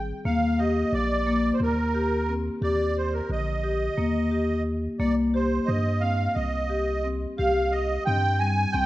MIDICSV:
0, 0, Header, 1, 4, 480
1, 0, Start_track
1, 0, Tempo, 678733
1, 176, Time_signature, 7, 3, 24, 8
1, 6265, End_track
2, 0, Start_track
2, 0, Title_t, "Accordion"
2, 0, Program_c, 0, 21
2, 180, Note_on_c, 0, 77, 94
2, 416, Note_on_c, 0, 75, 92
2, 423, Note_off_c, 0, 77, 0
2, 660, Note_off_c, 0, 75, 0
2, 662, Note_on_c, 0, 74, 108
2, 1086, Note_on_c, 0, 72, 61
2, 1098, Note_off_c, 0, 74, 0
2, 1132, Note_off_c, 0, 72, 0
2, 1150, Note_on_c, 0, 70, 100
2, 1650, Note_off_c, 0, 70, 0
2, 1862, Note_on_c, 0, 74, 90
2, 2102, Note_off_c, 0, 74, 0
2, 2104, Note_on_c, 0, 72, 78
2, 2217, Note_on_c, 0, 70, 69
2, 2219, Note_off_c, 0, 72, 0
2, 2336, Note_off_c, 0, 70, 0
2, 2345, Note_on_c, 0, 75, 87
2, 3272, Note_off_c, 0, 75, 0
2, 3531, Note_on_c, 0, 74, 90
2, 3641, Note_off_c, 0, 74, 0
2, 3784, Note_on_c, 0, 72, 77
2, 4004, Note_on_c, 0, 75, 91
2, 4028, Note_off_c, 0, 72, 0
2, 4249, Note_on_c, 0, 77, 97
2, 4259, Note_off_c, 0, 75, 0
2, 4489, Note_on_c, 0, 75, 93
2, 4501, Note_off_c, 0, 77, 0
2, 5008, Note_off_c, 0, 75, 0
2, 5221, Note_on_c, 0, 77, 104
2, 5458, Note_on_c, 0, 75, 93
2, 5469, Note_off_c, 0, 77, 0
2, 5683, Note_off_c, 0, 75, 0
2, 5697, Note_on_c, 0, 79, 115
2, 5935, Note_on_c, 0, 80, 106
2, 5945, Note_off_c, 0, 79, 0
2, 6169, Note_on_c, 0, 79, 120
2, 6183, Note_off_c, 0, 80, 0
2, 6265, Note_off_c, 0, 79, 0
2, 6265, End_track
3, 0, Start_track
3, 0, Title_t, "Marimba"
3, 0, Program_c, 1, 12
3, 179, Note_on_c, 1, 58, 96
3, 321, Note_off_c, 1, 58, 0
3, 422, Note_on_c, 1, 67, 77
3, 704, Note_off_c, 1, 67, 0
3, 897, Note_on_c, 1, 58, 85
3, 1181, Note_off_c, 1, 58, 0
3, 1375, Note_on_c, 1, 67, 83
3, 1516, Note_off_c, 1, 67, 0
3, 1617, Note_on_c, 1, 60, 73
3, 1758, Note_off_c, 1, 60, 0
3, 1855, Note_on_c, 1, 67, 95
3, 2140, Note_off_c, 1, 67, 0
3, 2332, Note_on_c, 1, 50, 67
3, 2474, Note_off_c, 1, 50, 0
3, 2571, Note_on_c, 1, 67, 74
3, 2714, Note_off_c, 1, 67, 0
3, 2811, Note_on_c, 1, 58, 81
3, 2954, Note_off_c, 1, 58, 0
3, 3050, Note_on_c, 1, 67, 70
3, 3339, Note_off_c, 1, 67, 0
3, 3533, Note_on_c, 1, 58, 92
3, 3678, Note_off_c, 1, 58, 0
3, 3776, Note_on_c, 1, 67, 70
3, 4064, Note_off_c, 1, 67, 0
3, 4253, Note_on_c, 1, 60, 76
3, 4542, Note_off_c, 1, 60, 0
3, 4735, Note_on_c, 1, 67, 75
3, 4880, Note_off_c, 1, 67, 0
3, 4983, Note_on_c, 1, 60, 75
3, 5126, Note_off_c, 1, 60, 0
3, 5221, Note_on_c, 1, 67, 97
3, 5508, Note_off_c, 1, 67, 0
3, 5708, Note_on_c, 1, 60, 78
3, 5848, Note_off_c, 1, 60, 0
3, 5941, Note_on_c, 1, 55, 82
3, 6083, Note_off_c, 1, 55, 0
3, 6182, Note_on_c, 1, 60, 85
3, 6265, Note_off_c, 1, 60, 0
3, 6265, End_track
4, 0, Start_track
4, 0, Title_t, "Sub bass"
4, 0, Program_c, 2, 38
4, 0, Note_on_c, 2, 32, 95
4, 95, Note_off_c, 2, 32, 0
4, 178, Note_on_c, 2, 39, 103
4, 599, Note_off_c, 2, 39, 0
4, 655, Note_on_c, 2, 34, 104
4, 1077, Note_off_c, 2, 34, 0
4, 1132, Note_on_c, 2, 39, 92
4, 1768, Note_off_c, 2, 39, 0
4, 1850, Note_on_c, 2, 39, 98
4, 2274, Note_off_c, 2, 39, 0
4, 2330, Note_on_c, 2, 34, 104
4, 2755, Note_off_c, 2, 34, 0
4, 2812, Note_on_c, 2, 39, 91
4, 3454, Note_off_c, 2, 39, 0
4, 3532, Note_on_c, 2, 36, 107
4, 3962, Note_off_c, 2, 36, 0
4, 4019, Note_on_c, 2, 43, 100
4, 4445, Note_off_c, 2, 43, 0
4, 4500, Note_on_c, 2, 36, 98
4, 5141, Note_off_c, 2, 36, 0
4, 5227, Note_on_c, 2, 36, 107
4, 5651, Note_off_c, 2, 36, 0
4, 5707, Note_on_c, 2, 43, 113
4, 6127, Note_off_c, 2, 43, 0
4, 6181, Note_on_c, 2, 36, 100
4, 6265, Note_off_c, 2, 36, 0
4, 6265, End_track
0, 0, End_of_file